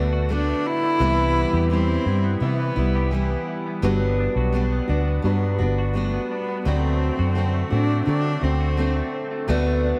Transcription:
Already playing: fingered electric bass D2, clean electric guitar F#3 A3 D4 F#4, steel-string acoustic guitar A3 B3 F#4, felt piano B3 A4 D5
0.13 clean electric guitar F#4
0.29 steel-string acoustic guitar D3 A3 B3 F#4, clean electric guitar D4, cello D4
0.48 clean electric guitar A3
0.66 clean electric guitar D4, cello E4
0.83 clean electric guitar A3
0.99 fingered electric bass C2, steel-string acoustic guitar C3 E3 G3 B3 E4, clean electric guitar E3, felt piano C4 B4 E5
1.19 clean electric guitar B3
1.36 clean electric guitar E4
1.53 fingered electric bass E2, clean electric guitar G4
1.70 steel-string acoustic guitar E3 G3 E4, cello C4, clean electric guitar E4
2.05 fingered electric bass G2, steel-string acoustic guitar G3 E4, clean electric guitar E4
2.24 clean electric guitar B3
2.40 fingered electric bass C3, steel-string acoustic guitar E3 G3 B3 E4, clean electric guitar E3, felt piano B3 B4 E5, cello B3
2.60 clean electric guitar B3
2.76 fingered electric bass C2, steel-string acoustic guitar G3 B3 E4, clean electric guitar E4
2.95 clean electric guitar G4
3.11 steel-string acoustic guitar E3 G3 B3 E4, clean electric guitar E4
3.30 clean electric guitar B3
3.48 clean electric guitar E4
3.66 clean electric guitar B3
3.82 fingered electric bass G1, clean electric guitar F#3, felt piano G3 F#4 B4, steel-string acoustic guitar G3 B3 D4 F#4
4.01 clean electric guitar B3
4.19 clean electric guitar D4
4.36 fingered electric bass B1, clean electric guitar F#4
4.52 steel-string acoustic guitar G3 B3 D4 F#4, clean electric guitar D4
4.72 clean electric guitar B3
4.88 fingered electric bass D2, steel-string acoustic guitar B3 D4 F#4, clean electric guitar D4
5.07 clean electric guitar B3
5.22 fingered electric bass G2, clean electric guitar F#3, steel-string acoustic guitar G3 B3 D4 F#4, felt piano G3 F#4 B4
5.43 clean electric guitar B3
5.58 fingered electric bass G1, steel-string acoustic guitar B3 D4 F#4, clean electric guitar D4
5.78 clean electric guitar F#4
5.93 steel-string acoustic guitar G3 B3 D4 F#4, clean electric guitar D4
5.98 cello A3
6.14 clean electric guitar B3
6.31 cello B3, clean electric guitar D4
6.49 clean electric guitar B3
6.65 fingered electric bass D2, steel-string acoustic guitar D3 A3 C4 F#4, clean electric guitar F#3, felt piano C4 F#4 D5, cello C4
6.84 clean electric guitar A3
7.01 clean electric guitar C4
7.19 fingered electric bass F#2, clean electric guitar F#4
7.35 steel-string acoustic guitar D3 A3 C4 F#4, clean electric guitar C4
7.54 clean electric guitar A3
7.70 fingered electric bass A2, steel-string acoustic guitar A3 C4 F#4, clean electric guitar C4, cello D4
7.89 clean electric guitar A3
8.06 steel-string acoustic guitar D3 A3 C4 F#4, fingered electric bass D3, clean electric guitar F#3, felt piano C4 F#4 A4, cello D4
8.24 clean electric guitar A3
8.41 fingered electric bass D2, steel-string acoustic guitar A3 C4 F#4, clean electric guitar C4, cello C4
8.60 clean electric guitar F#4
8.77 steel-string acoustic guitar D3 A3 C4 F#4, clean electric guitar C4
8.96 clean electric guitar A3
9.14 clean electric guitar C4
9.31 clean electric guitar A3
9.47 fingered electric bass D2, steel-string acoustic guitar D3 A3 B3 F#4, clean electric guitar A3, felt piano B3 A4 D5
9.66 clean electric guitar A3
9.84 clean electric guitar D4

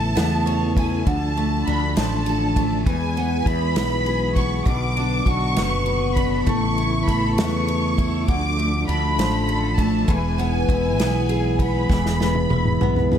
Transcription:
Already playing: fretless electric bass A1, tonewheel organ C#3 E3 A3 B3 E4, steel-string acoustic guitar A3 E4 A4, violin section A5
0.15 fretless electric bass E2, steel-string acoustic guitar B3, snare, ride
0.46 steel-string acoustic guitar C#5, ride
0.76 steel-string acoustic guitar E4, violin section G#5, kick, ride
1.06 fretless electric bass D2, steel-string acoustic guitar D3, tonewheel organ F3 D4, violin section A5, kick, ride
1.37 steel-string acoustic guitar A3, ride
1.67 fretless electric bass D2, steel-string acoustic guitar D4, violin section B5, ride
1.96 fretless electric bass A1, steel-string acoustic guitar F3, violin section A5, snare, ride
2.26 steel-string acoustic guitar A4, ride
2.56 steel-string acoustic guitar A3, kick, ride
2.86 fretless electric bass E2, tonewheel organ E3 G#3 B3, steel-string acoustic guitar E3, violin section G#5, kick, ride
3.17 steel-string acoustic guitar B3, ride
3.45 fretless electric bass E2, steel-string acoustic guitar E4, violin section B5, kick, ride
3.76 fretless electric bass B1, steel-string acoustic guitar B3, snare, ride
4.06 steel-string acoustic guitar G#4, ride
4.35 steel-string acoustic guitar B3, violin section C#6, kick, ride
4.65 fretless electric bass B1, steel-string acoustic guitar B2, tonewheel organ D3 F#3, violin section D6, kick, ride
4.97 steel-string acoustic guitar D4, ride
5.25 fretless electric bass B1, steel-string acoustic guitar F#4, violin section C#6, kick, ride
5.56 fretless electric bass F#1, steel-string acoustic guitar B3, snare, ride
5.86 steel-string acoustic guitar B4, ride
6.15 steel-string acoustic guitar D4, violin section B5, kick, ride
6.46 fretless electric bass A1, tonewheel organ C#3 E3 A3 E4, steel-string acoustic guitar A3, violin section C#6, kick, ride
6.78 steel-string acoustic guitar E4, ride
7.08 fretless electric bass A1, steel-string acoustic guitar A4, violin section B5, kick, ride
7.38 fretless electric bass E2, steel-string acoustic guitar B3, violin section C#6, snare, ride
7.67 steel-string acoustic guitar C#5, ride
7.98 steel-string acoustic guitar E4, kick, ride
8.27 fretless electric bass D2, steel-string acoustic guitar D3, tonewheel organ F3 D4, violin section D6, kick, ride
8.57 steel-string acoustic guitar A3, ride
8.88 fretless electric bass D2, steel-string acoustic guitar D4, violin section B5, ride
9.18 fretless electric bass A1, steel-string acoustic guitar F3, snare, ride
9.47 steel-string acoustic guitar A4, ride
9.77 steel-string acoustic guitar A3, violin section A5, kick, ride
10.08 fretless electric bass E1, steel-string acoustic guitar E3, tonewheel organ E3 G#3 B3, violin section G#5, kick, ride
10.38 steel-string acoustic guitar B3, ride
10.69 fretless electric bass E1, steel-string acoustic guitar E4, kick, ride
10.99 fretless electric bass B1, steel-string acoustic guitar B3, snare, ride
11.29 steel-string acoustic guitar G#4, ride
11.59 steel-string acoustic guitar B3, violin section B5, kick, ride
11.89 fretless electric bass E1, steel-string acoustic guitar E3, kick, snare
12.06 snare
12.20 steel-string acoustic guitar B3, snare
12.35 high tom
12.50 fretless electric bass E1, steel-string acoustic guitar E4, high tom
12.65 mid tom
12.81 fretless electric bass B1, steel-string acoustic guitar B3, mid tom
12.96 mid tom
13.12 steel-string acoustic guitar G#4, mid tom

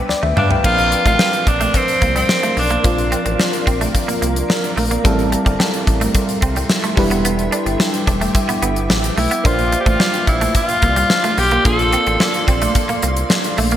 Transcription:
Already playing: fm electric piano G3 B3 D4 B4, ambient pad B4 D5 G5 D6
0.09 analog synth bass D2, fm electric piano B4 D5, muted clean electric guitar stroke, snare
0.23 analog synth bass D2, clean electric guitar A3, fm electric piano E5, high tom
0.37 analog synth bass G2, clean electric guitar G3, tenor saxophone D4, fm electric piano D5 F5, mid tom
0.50 fm electric piano E5 G5, floor tom
0.63 analog synth bass A#1, fm electric piano F3 C4 D4 A#4, clean electric guitar A#3, tenor saxophone F4, ambient pad A#4 D5 F5 C6, kick, crash
0.78 closed hi-hat
0.92 muted clean electric guitar stroke, closed hi-hat
1.06 analog synth bass A1, clean electric guitar A3, tenor saxophone F4, kick, closed hi-hat
1.19 clean electric guitar G3, snare
1.33 closed hi-hat
1.47 analog synth bass A#1, tenor saxophone D4, muted clean electric guitar stroke, kick, closed hi-hat
1.61 clean electric guitar A3, closed hi-hat
1.74 tenor saxophone C4, muted clean electric guitar stroke, kick, closed hi-hat
1.88 closed hi-hat
2.02 analog synth bass C2, clean electric guitar A#3, kick, closed hi-hat
2.16 clean electric guitar G3, tenor saxophone C4, closed hi-hat
2.29 snare
2.43 clean electric guitar A3, closed hi-hat
2.57 analog synth bass B1, tenor saxophone D4, muted clean electric guitar stroke, open hi-hat
2.70 clean electric guitar A#3, closed hi-hat
2.83 analog synth bass A#1, fm electric piano F3 C4 D4 F4, clean electric guitar A#3, ambient pad A#5, kick, closed hi-hat
2.98 closed hi-hat
3.12 clean electric guitar C4, closed hi-hat
3.26 analog synth bass A1, muted clean electric guitar stroke, closed hi-hat
3.40 muted clean electric guitar stroke, snare
3.53 closed hi-hat
3.67 analog synth bass A#1, clean electric guitar C4, kick, closed hi-hat
3.81 clean electric guitar A3, closed hi-hat
3.95 muted clean electric guitar stroke, kick, closed hi-hat
4.08 clean electric guitar A#3, closed hi-hat
4.22 analog synth bass C2, clean electric guitar A#3, closed hi-hat
4.36 closed hi-hat
4.50 muted clean electric guitar stroke, snare
4.64 closed hi-hat
4.77 analog synth bass A#1, clean electric guitar A3, open hi-hat
4.91 clean electric guitar A#3, closed hi-hat
5.04 analog synth bass A1, fm electric piano G3 C4 E4 A4, clean electric guitar A3, ambient pad A4 E5 G5 C6, kick, closed hi-hat
5.19 closed hi-hat
5.32 muted clean electric guitar stroke, closed hi-hat
5.46 analog synth bass G1, clean electric guitar G3, kick, closed hi-hat
5.60 clean electric guitar G3, snare
5.74 closed hi-hat
5.87 analog synth bass A1, muted clean electric guitar stroke, kick, closed hi-hat
6.01 clean electric guitar A3, closed hi-hat
6.14 muted clean electric guitar stroke, kick, closed hi-hat
6.29 closed hi-hat
6.42 analog synth bass C2, clean electric guitar C4, kick, closed hi-hat
6.56 clean electric guitar G3, closed hi-hat
6.70 snare
6.84 clean electric guitar A3, closed hi-hat
6.96 analog synth bass E1, fm electric piano G3 D4 E4 B4, ambient pad B4 D6, muted clean electric guitar stroke, kick, open hi-hat
7.11 clean electric guitar B3, closed hi-hat
7.25 clean electric guitar B3, closed hi-hat
7.39 closed hi-hat
7.52 clean electric guitar D4, closed hi-hat
7.66 analog synth bass G1, muted clean electric guitar stroke, closed hi-hat
7.80 muted clean electric guitar stroke, snare
7.94 closed hi-hat
8.07 analog synth bass E1, clean electric guitar D4, kick, closed hi-hat
8.21 clean electric guitar A3, closed hi-hat
8.35 muted clean electric guitar stroke, kick, closed hi-hat
8.49 clean electric guitar B3, closed hi-hat
8.62 analog synth bass G1, clean electric guitar B3, closed hi-hat
8.76 closed hi-hat
8.90 analog synth bass A1, muted clean electric guitar stroke, snare
9.04 closed hi-hat
9.17 analog synth bass B1, clean electric guitar A3, tenor saxophone E4, open hi-hat
9.31 clean electric guitar B3, closed hi-hat
9.44 analog synth bass A#1, fm electric piano A#3 D4 F4 C5, ambient pad A#3 D5 F5 C6, clean electric guitar A#3, tenor saxophone F4, kick, closed hi-hat
9.59 closed hi-hat
9.72 muted clean electric guitar stroke, closed hi-hat
9.80 tenor saxophone G4
9.86 analog synth bass A1, clean electric guitar A3, tenor saxophone F4, kick, closed hi-hat
10.00 clean electric guitar G3, snare
10.14 closed hi-hat
10.27 analog synth bass A#1, tenor saxophone E4, muted clean electric guitar stroke, kick, closed hi-hat
10.41 clean electric guitar A3, closed hi-hat
10.55 tenor saxophone F4, muted clean electric guitar stroke, kick, closed hi-hat
10.69 closed hi-hat
10.82 analog synth bass C2, clean electric guitar A#3, kick, closed hi-hat
10.96 clean electric guitar G3, closed hi-hat
11.10 snare
11.24 clean electric guitar A3, closed hi-hat
11.38 analog synth bass B1, tenor saxophone G4, muted clean electric guitar stroke, open hi-hat
11.51 clean electric guitar A#3, closed hi-hat
11.64 analog synth bass A#1, fm electric piano A#3 D4 F4 A4, clean electric guitar A#3, tenor saxophone A4, kick, closed hi-hat
11.79 closed hi-hat
11.92 clean electric guitar C4, closed hi-hat
12.07 analog synth bass A1, muted clean electric guitar stroke, closed hi-hat
12.20 muted clean electric guitar stroke, snare
12.34 closed hi-hat
12.48 analog synth bass A#1, clean electric guitar C4, kick, closed hi-hat
12.62 clean electric guitar A3, closed hi-hat
12.75 muted clean electric guitar stroke, kick, closed hi-hat
12.89 clean electric guitar A#3, closed hi-hat
13.02 analog synth bass C2, clean electric guitar A#3, closed hi-hat
13.17 closed hi-hat
13.30 muted clean electric guitar stroke, snare
13.44 closed hi-hat
13.58 analog synth bass A#1, clean electric guitar A3, open hi-hat
13.71 clean electric guitar A#3, closed hi-hat

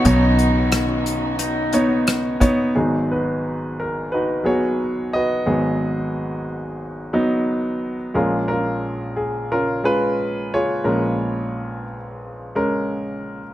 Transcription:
Already playing: string section D#3 B3 C#4 F#4, grand piano B3 D#4 F4 F#4 B4 C#5 D#5
0.05 fingered electric bass B1, grand piano B1 B2 B3 D#4 C#5, pedal steel guitar D#4, kick, closed hi-hat
0.39 closed hi-hat
0.72 cross-stick, closed hi-hat
1.06 closed hi-hat
1.39 pedal steel guitar D#4, closed hi-hat
1.73 grand piano B3 D#4 C#5, closed hi-hat
2.07 cross-stick, closed hi-hat
2.40 grand piano B3 D#4 C#5, kick, closed hi-hat
2.75 grand piano G#1 G#2 F#3 B3 G#4
2.79 grand piano D#4
3.11 grand piano D#4 F#4 B4
3.80 grand piano A#4
4.12 grand piano D#4 F#4 B4
4.44 grand piano F#3 B3 G#4 C#5
4.48 grand piano F#4
5.13 grand piano F#4 B4 D#5
5.46 grand piano G#1 G#2 F#3 B3 G#4
7.13 grand piano F#3 B3 D#4
8.14 grand piano A#1 A#2 G#3 C#4 F4 G#4 A#4
8.48 grand piano C#4 F4 A#4
9.16 grand piano G#4
9.52 grand piano C#4 F4 A#4
9.83 grand piano G#3 C#4 F4 G#4 B4
10.54 grand piano F4 G#4 C#5
10.84 grand piano A#1 A#2 G#3 C#4 A#4
12.55 grand piano G#3 C#4 A#4

